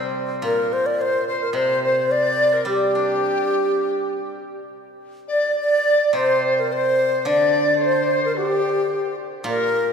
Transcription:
0, 0, Header, 1, 4, 480
1, 0, Start_track
1, 0, Tempo, 555556
1, 380, Time_signature, 4, 2, 24, 8
1, 2780, Tempo, 579151
1, 5660, Tempo, 552995
1, 8468, End_track
2, 0, Start_track
2, 0, Title_t, "Dizi"
2, 0, Program_c, 0, 73
2, 0, Note_on_c, 0, 72, 71
2, 100, Note_off_c, 0, 72, 0
2, 375, Note_on_c, 0, 70, 70
2, 854, Note_on_c, 0, 72, 75
2, 867, Note_off_c, 0, 70, 0
2, 1092, Note_off_c, 0, 72, 0
2, 1097, Note_on_c, 0, 72, 82
2, 1319, Note_off_c, 0, 72, 0
2, 1335, Note_on_c, 0, 72, 84
2, 1558, Note_off_c, 0, 72, 0
2, 1586, Note_on_c, 0, 72, 75
2, 1804, Note_off_c, 0, 72, 0
2, 1819, Note_on_c, 0, 74, 77
2, 2186, Note_on_c, 0, 70, 68
2, 2199, Note_off_c, 0, 74, 0
2, 2307, Note_on_c, 0, 67, 74
2, 2320, Note_off_c, 0, 70, 0
2, 3751, Note_off_c, 0, 67, 0
2, 4488, Note_on_c, 0, 74, 76
2, 4705, Note_off_c, 0, 74, 0
2, 4717, Note_on_c, 0, 74, 79
2, 5205, Note_on_c, 0, 72, 79
2, 5218, Note_off_c, 0, 74, 0
2, 5666, Note_off_c, 0, 72, 0
2, 5670, Note_on_c, 0, 72, 79
2, 6158, Note_on_c, 0, 74, 83
2, 6171, Note_off_c, 0, 72, 0
2, 6634, Note_on_c, 0, 72, 69
2, 6647, Note_off_c, 0, 74, 0
2, 7117, Note_on_c, 0, 67, 74
2, 7130, Note_off_c, 0, 72, 0
2, 7582, Note_off_c, 0, 67, 0
2, 7587, Note_on_c, 0, 67, 61
2, 7806, Note_off_c, 0, 67, 0
2, 8073, Note_on_c, 0, 70, 71
2, 8402, Note_off_c, 0, 70, 0
2, 8441, Note_on_c, 0, 70, 68
2, 8468, Note_off_c, 0, 70, 0
2, 8468, End_track
3, 0, Start_track
3, 0, Title_t, "Xiao"
3, 0, Program_c, 1, 77
3, 0, Note_on_c, 1, 72, 72
3, 113, Note_off_c, 1, 72, 0
3, 393, Note_on_c, 1, 70, 98
3, 629, Note_on_c, 1, 72, 92
3, 642, Note_off_c, 1, 70, 0
3, 744, Note_on_c, 1, 74, 90
3, 757, Note_off_c, 1, 72, 0
3, 876, Note_on_c, 1, 72, 100
3, 889, Note_off_c, 1, 74, 0
3, 1105, Note_off_c, 1, 72, 0
3, 1109, Note_on_c, 1, 72, 87
3, 1211, Note_off_c, 1, 72, 0
3, 1216, Note_on_c, 1, 70, 84
3, 1334, Note_on_c, 1, 72, 94
3, 1347, Note_off_c, 1, 70, 0
3, 1574, Note_off_c, 1, 72, 0
3, 1596, Note_on_c, 1, 72, 83
3, 1827, Note_on_c, 1, 74, 96
3, 1840, Note_off_c, 1, 72, 0
3, 2303, Note_off_c, 1, 74, 0
3, 2320, Note_on_c, 1, 67, 82
3, 3724, Note_off_c, 1, 67, 0
3, 4514, Note_on_c, 1, 74, 90
3, 4719, Note_off_c, 1, 74, 0
3, 4753, Note_on_c, 1, 74, 105
3, 5179, Note_off_c, 1, 74, 0
3, 5217, Note_on_c, 1, 72, 92
3, 5533, Note_off_c, 1, 72, 0
3, 5569, Note_on_c, 1, 70, 78
3, 5689, Note_on_c, 1, 72, 97
3, 5702, Note_off_c, 1, 70, 0
3, 6157, Note_on_c, 1, 74, 95
3, 6170, Note_off_c, 1, 72, 0
3, 6654, Note_on_c, 1, 72, 92
3, 6667, Note_off_c, 1, 74, 0
3, 7001, Note_off_c, 1, 72, 0
3, 7009, Note_on_c, 1, 70, 79
3, 7110, Note_off_c, 1, 70, 0
3, 7114, Note_on_c, 1, 67, 82
3, 7788, Note_off_c, 1, 67, 0
3, 8074, Note_on_c, 1, 70, 88
3, 8468, Note_off_c, 1, 70, 0
3, 8468, End_track
4, 0, Start_track
4, 0, Title_t, "Guzheng"
4, 0, Program_c, 2, 107
4, 0, Note_on_c, 2, 48, 51
4, 0, Note_on_c, 2, 55, 44
4, 0, Note_on_c, 2, 60, 43
4, 364, Note_on_c, 2, 46, 55
4, 371, Note_off_c, 2, 48, 0
4, 622, Note_off_c, 2, 55, 0
4, 860, Note_off_c, 2, 60, 0
4, 1322, Note_on_c, 2, 48, 52
4, 1326, Note_off_c, 2, 46, 0
4, 2289, Note_on_c, 2, 55, 50
4, 2550, Note_on_c, 2, 62, 38
4, 2774, Note_off_c, 2, 48, 0
4, 3505, Note_off_c, 2, 62, 0
4, 3742, Note_off_c, 2, 55, 0
4, 5193, Note_on_c, 2, 48, 54
4, 6145, Note_off_c, 2, 48, 0
4, 6145, Note_on_c, 2, 50, 60
4, 7581, Note_off_c, 2, 50, 0
4, 8045, Note_on_c, 2, 46, 62
4, 8468, Note_off_c, 2, 46, 0
4, 8468, End_track
0, 0, End_of_file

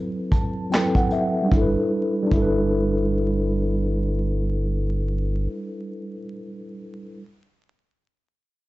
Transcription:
0, 0, Header, 1, 4, 480
1, 0, Start_track
1, 0, Key_signature, 1, "major"
1, 0, Tempo, 800000
1, 908, Time_signature, 4, 2, 24, 8
1, 5210, End_track
2, 0, Start_track
2, 0, Title_t, "Tine electric piano"
2, 0, Program_c, 0, 4
2, 0, Control_c, 0, 64, 127
2, 0, Note_on_c, 0, 54, 79
2, 0, Note_on_c, 0, 60, 66
2, 0, Note_on_c, 0, 64, 67
2, 0, Note_on_c, 0, 69, 65
2, 0, Note_on_c, 0, 71, 80
2, 192, Note_on_c, 0, 81, 63
2, 401, Note_off_c, 0, 60, 0
2, 408, Note_off_c, 0, 64, 0
2, 413, Note_off_c, 0, 54, 0
2, 414, Note_off_c, 0, 81, 0
2, 416, Note_off_c, 0, 69, 0
2, 420, Note_on_c, 0, 54, 54
2, 423, Note_off_c, 0, 71, 0
2, 428, Note_on_c, 0, 60, 52
2, 433, Note_on_c, 0, 79, 68
2, 435, Note_on_c, 0, 64, 53
2, 442, Note_on_c, 0, 69, 51
2, 449, Note_on_c, 0, 71, 64
2, 560, Note_off_c, 0, 79, 0
2, 577, Note_on_c, 0, 78, 68
2, 667, Note_off_c, 0, 78, 0
2, 675, Note_on_c, 0, 76, 59
2, 852, Note_on_c, 0, 55, 70
2, 882, Note_on_c, 0, 62, 68
2, 895, Note_off_c, 0, 76, 0
2, 904, Note_off_c, 0, 54, 0
2, 904, Note_off_c, 0, 64, 0
2, 908, Note_off_c, 0, 60, 0
2, 911, Note_on_c, 0, 64, 67
2, 915, Note_off_c, 0, 69, 0
2, 916, Control_c, 0, 64, 0
2, 919, Note_off_c, 0, 71, 0
2, 940, Note_on_c, 0, 69, 65
2, 968, Note_on_c, 0, 71, 79
2, 1016, Control_c, 0, 64, 127
2, 1026, Note_off_c, 0, 55, 0
2, 1042, Note_off_c, 0, 62, 0
2, 1057, Note_off_c, 0, 64, 0
2, 1073, Note_off_c, 0, 69, 0
2, 1088, Note_off_c, 0, 71, 0
2, 1333, Note_on_c, 0, 55, 74
2, 1361, Note_on_c, 0, 62, 67
2, 1392, Note_on_c, 0, 64, 72
2, 1422, Note_on_c, 0, 69, 69
2, 1451, Note_on_c, 0, 71, 79
2, 3677, Note_off_c, 0, 55, 0
2, 3691, Note_off_c, 0, 62, 0
2, 3706, Note_off_c, 0, 64, 0
2, 3721, Note_off_c, 0, 69, 0
2, 3736, Note_off_c, 0, 71, 0
2, 4335, Control_c, 0, 64, 0
2, 5210, End_track
3, 0, Start_track
3, 0, Title_t, "Sub bass"
3, 0, Program_c, 1, 38
3, 910, Note_on_c, 1, 31, 93
3, 1057, Note_off_c, 1, 31, 0
3, 1390, Note_on_c, 1, 31, 102
3, 3285, Note_off_c, 1, 31, 0
3, 5210, End_track
4, 0, Start_track
4, 0, Title_t, "Drums"
4, 190, Note_on_c, 9, 36, 78
4, 190, Note_on_c, 9, 42, 76
4, 250, Note_off_c, 9, 36, 0
4, 250, Note_off_c, 9, 42, 0
4, 433, Note_on_c, 9, 42, 72
4, 448, Note_on_c, 9, 38, 106
4, 448, Note_on_c, 9, 39, 81
4, 493, Note_off_c, 9, 42, 0
4, 508, Note_off_c, 9, 38, 0
4, 508, Note_off_c, 9, 39, 0
4, 570, Note_on_c, 9, 36, 86
4, 630, Note_off_c, 9, 36, 0
4, 663, Note_on_c, 9, 42, 53
4, 723, Note_off_c, 9, 42, 0
4, 908, Note_on_c, 9, 36, 90
4, 968, Note_off_c, 9, 36, 0
4, 1388, Note_on_c, 9, 36, 86
4, 1448, Note_off_c, 9, 36, 0
4, 5210, End_track
0, 0, End_of_file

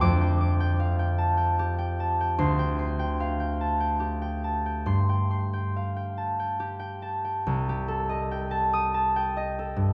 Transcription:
0, 0, Header, 1, 2, 480
1, 0, Start_track
1, 0, Tempo, 776197
1, 20, Time_signature, 3, 2, 24, 8
1, 981, Tempo, 803213
1, 2421, Tempo, 867052
1, 4821, Tempo, 829876
1, 5746, End_track
2, 0, Start_track
2, 0, Title_t, "Harp"
2, 0, Program_c, 0, 46
2, 0, Note_on_c, 0, 77, 58
2, 0, Note_on_c, 0, 79, 60
2, 0, Note_on_c, 0, 84, 61
2, 7, Note_on_c, 0, 86, 95
2, 11, Note_on_c, 0, 41, 67
2, 122, Note_off_c, 0, 79, 0
2, 130, Note_on_c, 0, 79, 57
2, 244, Note_off_c, 0, 86, 0
2, 251, Note_on_c, 0, 86, 59
2, 365, Note_off_c, 0, 79, 0
2, 373, Note_on_c, 0, 79, 60
2, 485, Note_off_c, 0, 77, 0
2, 492, Note_on_c, 0, 77, 53
2, 606, Note_off_c, 0, 79, 0
2, 613, Note_on_c, 0, 79, 61
2, 731, Note_on_c, 0, 81, 53
2, 841, Note_off_c, 0, 79, 0
2, 849, Note_on_c, 0, 79, 55
2, 941, Note_off_c, 0, 81, 0
2, 985, Note_on_c, 0, 67, 59
2, 1093, Note_off_c, 0, 79, 0
2, 1100, Note_on_c, 0, 79, 56
2, 1228, Note_on_c, 0, 81, 45
2, 1344, Note_off_c, 0, 79, 0
2, 1352, Note_on_c, 0, 79, 50
2, 1427, Note_off_c, 0, 81, 0
2, 1450, Note_off_c, 0, 84, 0
2, 1458, Note_on_c, 0, 84, 75
2, 1459, Note_on_c, 0, 38, 67
2, 1473, Note_off_c, 0, 41, 0
2, 1573, Note_off_c, 0, 79, 0
2, 1580, Note_on_c, 0, 79, 57
2, 1692, Note_off_c, 0, 84, 0
2, 1699, Note_on_c, 0, 84, 52
2, 1815, Note_off_c, 0, 79, 0
2, 1822, Note_on_c, 0, 79, 49
2, 1939, Note_off_c, 0, 77, 0
2, 1946, Note_on_c, 0, 77, 47
2, 2057, Note_off_c, 0, 79, 0
2, 2064, Note_on_c, 0, 79, 46
2, 2189, Note_on_c, 0, 81, 48
2, 2298, Note_off_c, 0, 79, 0
2, 2306, Note_on_c, 0, 79, 49
2, 2390, Note_off_c, 0, 81, 0
2, 2414, Note_off_c, 0, 67, 0
2, 2421, Note_on_c, 0, 67, 50
2, 2537, Note_off_c, 0, 79, 0
2, 2543, Note_on_c, 0, 79, 43
2, 2593, Note_off_c, 0, 86, 0
2, 2667, Note_on_c, 0, 81, 35
2, 2781, Note_off_c, 0, 79, 0
2, 2788, Note_on_c, 0, 79, 41
2, 2864, Note_off_c, 0, 81, 0
2, 2894, Note_off_c, 0, 84, 0
2, 2898, Note_on_c, 0, 43, 50
2, 2902, Note_on_c, 0, 84, 65
2, 2914, Note_off_c, 0, 38, 0
2, 3021, Note_off_c, 0, 79, 0
2, 3028, Note_on_c, 0, 79, 40
2, 3140, Note_off_c, 0, 84, 0
2, 3147, Note_on_c, 0, 84, 43
2, 3265, Note_off_c, 0, 79, 0
2, 3272, Note_on_c, 0, 79, 43
2, 3393, Note_off_c, 0, 77, 0
2, 3399, Note_on_c, 0, 77, 37
2, 3504, Note_off_c, 0, 79, 0
2, 3510, Note_on_c, 0, 79, 39
2, 3627, Note_on_c, 0, 81, 36
2, 3742, Note_off_c, 0, 79, 0
2, 3749, Note_on_c, 0, 79, 41
2, 3826, Note_off_c, 0, 81, 0
2, 3854, Note_off_c, 0, 67, 0
2, 3861, Note_on_c, 0, 67, 43
2, 3964, Note_off_c, 0, 79, 0
2, 3971, Note_on_c, 0, 79, 42
2, 4097, Note_on_c, 0, 81, 34
2, 4213, Note_off_c, 0, 79, 0
2, 4220, Note_on_c, 0, 79, 38
2, 4305, Note_off_c, 0, 81, 0
2, 4342, Note_on_c, 0, 36, 61
2, 4365, Note_off_c, 0, 43, 0
2, 4370, Note_off_c, 0, 77, 0
2, 4460, Note_off_c, 0, 67, 0
2, 4467, Note_on_c, 0, 67, 48
2, 4572, Note_on_c, 0, 69, 47
2, 4689, Note_on_c, 0, 75, 47
2, 4805, Note_off_c, 0, 79, 0
2, 4811, Note_on_c, 0, 79, 52
2, 4924, Note_on_c, 0, 81, 55
2, 5054, Note_on_c, 0, 87, 84
2, 5167, Note_off_c, 0, 81, 0
2, 5174, Note_on_c, 0, 81, 56
2, 5294, Note_off_c, 0, 79, 0
2, 5301, Note_on_c, 0, 79, 59
2, 5328, Note_off_c, 0, 84, 0
2, 5414, Note_off_c, 0, 75, 0
2, 5421, Note_on_c, 0, 75, 51
2, 5541, Note_off_c, 0, 69, 0
2, 5548, Note_on_c, 0, 69, 43
2, 5650, Note_on_c, 0, 43, 48
2, 5746, Note_off_c, 0, 36, 0
2, 5746, Note_off_c, 0, 43, 0
2, 5746, Note_off_c, 0, 67, 0
2, 5746, Note_off_c, 0, 69, 0
2, 5746, Note_off_c, 0, 75, 0
2, 5746, Note_off_c, 0, 79, 0
2, 5746, Note_off_c, 0, 81, 0
2, 5746, Note_off_c, 0, 87, 0
2, 5746, End_track
0, 0, End_of_file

